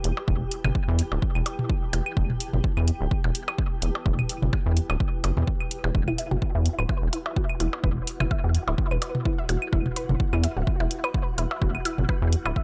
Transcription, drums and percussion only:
0.04 closed hi-hat
0.17 percussion blips
0.28 kick
0.51 closed hi-hat
0.65 mid tom, claves, percussion blips
0.75 kick
0.99 closed hi-hat
1.12 percussion blips
1.22 kick
1.35 claves
1.46 closed hi-hat, percussion blips
1.59 mid tom
1.70 kick
1.93 closed hi-hat, percussion blips
2.06 claves
2.17 kick
2.30 mid tom
2.40 closed hi-hat
2.53 mid tom
2.64 kick
2.77 claves
2.88 closed hi-hat
3.11 kick
3.24 percussion blips
3.35 closed hi-hat
3.48 claves, percussion blips
3.58 kick
3.82 closed hi-hat
3.95 percussion blips
4.06 kick
4.19 mid tom, claves
4.29 closed hi-hat
4.42 mid tom
4.53 kick, percussion blips
4.77 closed hi-hat
4.90 claves, percussion blips
5.00 kick
5.24 closed hi-hat, percussion blips
5.37 mid tom
5.47 kick
5.60 claves
5.71 closed hi-hat
5.84 percussion blips
5.95 kick
6.08 mid tom, claves
6.18 closed hi-hat
6.31 mid tom
6.42 kick
6.66 closed hi-hat
6.79 claves
6.89 kick, percussion blips
7.13 closed hi-hat
7.26 percussion blips
7.36 kick
7.50 claves
7.60 closed hi-hat
7.73 percussion blips
7.84 kick
8.07 closed hi-hat
8.20 mid tom, claves, percussion blips
8.31 kick
8.55 closed hi-hat
8.68 percussion blips
8.78 kick
8.91 claves
9.02 closed hi-hat, percussion blips
9.15 mid tom
9.25 kick
9.49 closed hi-hat, percussion blips
9.62 claves
9.73 kick
9.86 mid tom
9.96 closed hi-hat
10.09 mid tom
10.20 kick
10.33 claves
10.44 closed hi-hat
10.67 kick
10.80 percussion blips
10.91 closed hi-hat
11.04 claves, percussion blips
11.14 kick
11.38 closed hi-hat
11.51 percussion blips
11.62 kick
11.75 claves
11.85 closed hi-hat
11.98 mid tom
12.09 kick, percussion blips
12.33 closed hi-hat
12.46 claves, percussion blips
12.56 kick

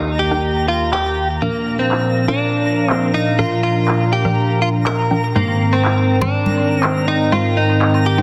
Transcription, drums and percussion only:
0.93 clap
1.91 clap
2.90 clap
3.88 clap
4.86 clap
5.48 high woodblock
5.73 high woodblock
5.85 clap
5.97 high woodblock
6.21 low conga, high woodblock
6.46 high conga
6.57 high woodblock
6.83 clap, high woodblock
7.08 high woodblock
7.32 high woodblock
7.69 high woodblock
7.82 clap
7.94 high woodblock
8.18 high woodblock

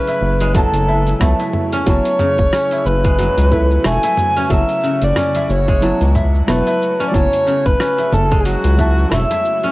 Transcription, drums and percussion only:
0.08 open hi-hat, cabasa
0.41 open hi-hat, cabasa
0.55 kick, mid tom, open hi-hat, cabasa
0.74 open hi-hat, cabasa
1.07 open hi-hat, cabasa
1.21 kick, cross-stick, open hi-hat, cabasa
1.40 open hi-hat, cabasa
1.53 mid tom
1.73 open hi-hat, cabasa
1.87 kick, open hi-hat, cabasa
2.05 open hi-hat, cabasa
2.19 mid tom, cabasa
2.38 kick, open hi-hat, cabasa
2.53 cross-stick, open hi-hat, cabasa
2.71 open hi-hat, cabasa
2.86 cabasa
3.04 kick, open hi-hat, cabasa
3.19 mid tom, open hi-hat, cabasa
3.38 open hi-hat, cabasa
3.52 kick, cabasa
3.71 cabasa
3.84 cross-stick, open hi-hat, cabasa
4.03 open hi-hat, cabasa
4.17 mid tom, cabasa
4.36 open hi-hat, cabasa
4.50 kick, open hi-hat, cabasa
4.69 open hi-hat, cabasa
4.84 cabasa
5.02 open hi-hat, cabasa
5.16 cross-stick, mid tom, open hi-hat, cabasa
5.35 open hi-hat, cabasa
5.50 cabasa
5.68 kick, open hi-hat, cabasa
5.82 open hi-hat, cabasa
6.01 open hi-hat, cabasa
6.15 kick, mid tom, cabasa
6.35 cabasa
6.48 cross-stick, open hi-hat, cabasa
6.67 open hi-hat, cabasa
6.82 cabasa
7.00 open hi-hat, cabasa
7.14 kick, mid tom, open hi-hat, cabasa
7.33 open hi-hat, cabasa
7.47 cabasa
7.66 kick, open hi-hat, cabasa
7.80 cross-stick, open hi-hat, cabasa
7.98 open hi-hat, cabasa
8.13 mid tom, cabasa
8.32 kick, open hi-hat, cabasa
8.45 open hi-hat, cabasa
8.64 open hi-hat, cabasa
8.79 kick, cabasa
8.98 cabasa
9.12 cross-stick, mid tom, open hi-hat, cabasa
9.31 open hi-hat, cabasa
9.45 cabasa
9.63 open hi-hat, cabasa

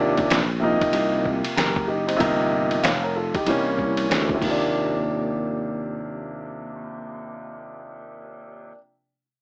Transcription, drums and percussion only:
0.17 kick, ride
0.30 snare, hi-hat pedal, ride
0.81 kick, ride
0.93 ride
1.25 kick
1.45 ride
1.57 snare, hi-hat pedal, ride
1.76 kick
2.09 ride
2.20 kick, ride
2.71 ride
2.84 snare, hi-hat pedal, ride
3.34 kick, ride
3.47 ride
3.78 kick
3.97 ride
4.11 snare, hi-hat pedal, ride
4.29 kick
4.42 kick, crash

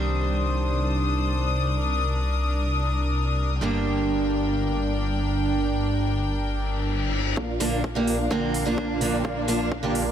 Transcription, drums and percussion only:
7.37 kick
7.61 open hi-hat
7.84 kick
8.07 open hi-hat
8.31 kick
8.54 open hi-hat
8.78 kick
9.01 open hi-hat
9.25 kick
9.48 open hi-hat
9.72 kick
9.95 open hi-hat

